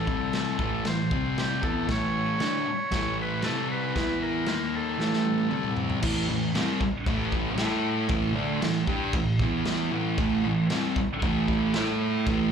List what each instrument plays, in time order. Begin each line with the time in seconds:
Already playing: transistor combo organ A4
0.07 distorted electric guitar C3 G3 C4, kick
0.33 transistor combo organ A4, snare, crash
0.58 distorted electric guitar A2 E3 A3, kick
0.84 distorted electric guitar A2 E3, transistor combo organ C5, snare, crash
1.11 distorted electric guitar C3 G3 C4, kick
1.38 transistor combo organ G4, snare, crash
1.62 distorted electric guitar E3 B3 E4, transistor combo organ A4, kick
1.87 distorted electric guitar A2 E3 A3, kick, snare, crash
1.92 transistor combo organ C#5
2.40 distorted electric guitar D3 A3 D4, snare, crash
2.67 muted distorted electric guitar stroke
2.91 distorted electric guitar A2 E3 A3, transistor combo organ C#5, kick, snare, crash
3.22 transistor combo organ B4
3.42 distorted electric guitar C3 G3 C4, transistor combo organ A4, snare, crash
3.72 transistor combo organ B4
3.95 distorted electric guitar E3 B3 E4, kick, snare, crash
4.22 transistor combo organ A#4
4.46 distorted electric guitar D#3 A#3 D#4, snare, crash
4.76 transistor combo organ A4
4.98 distorted electric guitar A2 E3 A3, snare
5.13 snare
5.25 high tom
5.38 high tom
5.49 distorted electric guitar C3 G3 C4, mid tom
5.64 mid tom
5.76 floor tom
5.90 floor tom
6.01 distorted electric guitar A2 E3 A3, kick, crash
6.29 distorted electric guitar A2 E3
6.55 distorted electric guitar C3 G3 C4, snare, crash
6.81 muted distorted electric guitar stroke, kick
7.06 distorted electric guitar A2 E3 A3, kick, crash
7.32 kick
7.57 distorted electric guitar A3 E4 A4, snare, crash
8.08 distorted electric guitar A2 E3 A3, kick, crash
8.33 distorted electric guitar D3 A3 D4
8.61 distorted electric guitar A2 E3, snare, crash
8.87 distorted electric guitar G3 D4 G4, kick
9.13 distorted electric guitar A2 E3, kick, crash
9.39 distorted electric guitar E3 B3 E4, kick
9.65 snare, crash
9.91 distorted electric guitar A2 E3 A3
10.18 distorted electric guitar A2 E3 A3, kick, crash
10.45 distorted electric guitar A2 E3
10.70 distorted electric guitar C3 G3 C4, snare, crash
10.96 muted distorted electric guitar stroke, kick
11.22 distorted electric guitar A2 E3 A3, kick, crash
11.48 kick
11.74 distorted electric guitar A3 E4 A4, snare, crash
12.27 distorted electric guitar A2 E3 A3, kick, crash